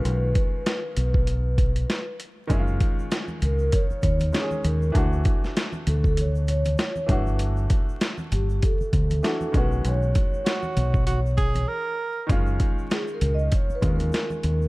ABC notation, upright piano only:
X:1
M:4/4
L:1/8
Q:"Swing 16ths" 1/4=98
K:Blyd
V:1 name="Upright piano"
[D,G,CE]6- [D,G,CE] z | [D,G,C=E^E]6 [D,G,C=G^G]2 | [=E,=A,=DF]6- [E,A,DF] [E,A,DF]- | [=E,=A,=DF]6 [E,A,DF] [^D,G,CF]- |
[D,G,CF]6- [D,G,CF] z | [D,G,CE]4- [D,G,CE] [D,G,CE]3 |]